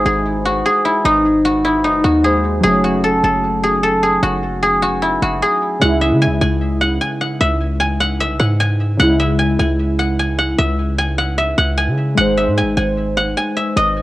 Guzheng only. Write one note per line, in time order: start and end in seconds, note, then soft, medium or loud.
0.00 0.85 E4 medium
0.00 0.45 F#4 loud
0.06 0.65 G#4 medium
0.45 1.45 F#4 medium
0.66 2.24 G#4 medium
0.85 1.11 E4 medium
1.05 1.71 D#4 loud
1.45 2.04 F#4 medium
1.65 1.90 E4 medium
1.84 4.55 D#4 medium
2.04 2.84 F#4 medium
2.24 2.63 G#4 medium
2.63 3.10 G#4 loud
2.84 4.22 F#4 medium
3.04 3.23 A4 medium
3.24 3.70 A4 medium
3.64 3.89 G#4 medium
3.83 4.09 A4 medium
4.03 4.62 G#4 medium
4.23 4.82 F#4 medium
4.63 5.42 G#4 medium
4.82 5.22 F#4 medium
5.02 7.63 E4 medium
5.22 7.66 F#4 medium
5.42 7.70 G#4 medium
5.81 6.81 F#5 loud
6.01 7.40 E5 medium
6.22 6.41 G#5 medium
6.41 7.01 G#5 medium
6.81 7.20 F#5 medium
7.01 7.80 G#5 medium
7.21 8.00 F#5 medium
7.40 8.20 E5 medium
7.80 8.60 G#5 medium
8.00 8.39 F#5 medium
8.20 9.19 E5 medium
8.40 8.99 F#5 medium
8.60 9.38 G#5 medium
9.00 9.99 F#5 loud
9.20 10.58 E5 medium
9.39 9.59 G#5 medium
9.59 10.19 G#5 medium
9.99 10.38 F#5 medium
10.19 10.98 G#5 medium
10.39 11.18 F#5 medium
10.58 11.37 E5 medium
10.98 11.77 G#5 medium
11.18 11.57 F#5 medium
11.38 12.37 E5 medium
11.58 12.17 F#5 medium
11.78 12.57 G#5 medium
12.17 13.17 F#5 loud
12.37 13.56 E5 medium
12.58 12.77 G#5 medium
12.77 13.37 G#5 medium
13.17 14.02 F#5 medium
13.37 14.02 G#5 medium
13.57 13.83 E5 medium
13.77 14.02 D#5 loud